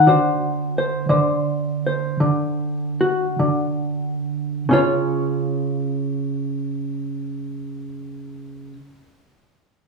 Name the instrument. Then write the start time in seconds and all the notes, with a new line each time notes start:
hollow-body jazz guitar
Already playing: F#5
0.07 D3 F#4 C5
0.78 C5
1.09 D3 C5
1.87 C5
2.20 D3
3.01 F#4
3.39 D3
4.69 C#3 C#4 F4
4.73 C#5